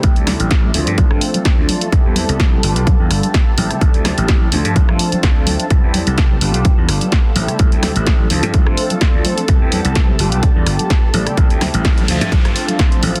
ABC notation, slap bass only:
X:1
M:4/4
L:1/16
Q:"Swing 16ths" 1/4=127
K:Ddor
V:1 name="Slap bass" clef=bass
A,,, D,,2 A,,,3 D,, G,, A,,, G,, z3 D,, z2 | C,, E,,2 C,,3 G,,, B,,,2 E,, G,,, z3 A,,, z | A,,, D,,2 A,,,3 D,, G,, A,,, G,, z2 D,,3 z | C,, E,,2 C,,3 G,,, B,,,2 E,, G,,, z3 A,,, z |
A,,, D,,2 A,,,3 D,, G,, A,,, G,, z3 D,, z2 | C,, E,,2 C,,3 G,,, B,,,2 E,, G,,, z3 A,,, z | A,,, D,,2 A,,,3 D,, G,, A,,, G,, z4 A,,, z |]